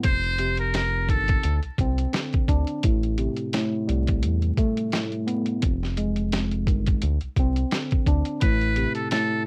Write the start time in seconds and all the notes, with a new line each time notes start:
0.03 F1 F2 C5, kick, closed hi-hat
0.24 closed hi-hat
0.38 C3, closed hi-hat
0.57 A#4, closed hi-hat
0.73 F2 A#4, snare, closed hi-hat
1.09 G1 D#3 A4, kick, closed hi-hat
1.28 kick, closed hi-hat
1.43 D2, closed hi-hat
1.63 C2, closed hi-hat
1.78 C2 C4, kick, closed hi-hat
1.98 closed hi-hat
2.13 D3, snare, closed hi-hat
2.33 kick, closed hi-hat
2.48 D2 D4, kick, closed hi-hat
2.67 closed hi-hat
2.83 A1 A2, kick, closed hi-hat
3.03 closed hi-hat
3.18 C3, closed hi-hat
3.36 closed hi-hat
3.53 A2, snare, closed hi-hat
3.88 C2 G3, closed hi-hat
4.07 kick, closed hi-hat
4.23 E2, closed hi-hat
4.42 closed hi-hat
4.57 A3, kick, closed hi-hat
4.77 closed hi-hat
4.92 A2, snare, closed hi-hat
5.12 closed hi-hat
5.27 B3, closed hi-hat
5.46 closed hi-hat
5.61 F1 F2, kick, closed hi-hat
5.83 snare
5.97 G#3, closed hi-hat
6.16 closed hi-hat
6.32 F2, snare, closed hi-hat
6.51 closed hi-hat
6.67 G1 D#3, kick, closed hi-hat
6.86 kick, closed hi-hat
7.02 D2, closed hi-hat
7.21 C2, closed hi-hat
7.36 C2 C4, kick, closed hi-hat
7.56 closed hi-hat
7.71 D3, snare, closed hi-hat
7.91 kick, closed hi-hat
8.06 D2 D4, kick, closed hi-hat
8.25 closed hi-hat
8.41 A1 A2 B4, kick, closed hi-hat
8.61 closed hi-hat
8.76 C3, closed hi-hat
8.95 A4, closed hi-hat
9.11 A2 A4, snare, closed hi-hat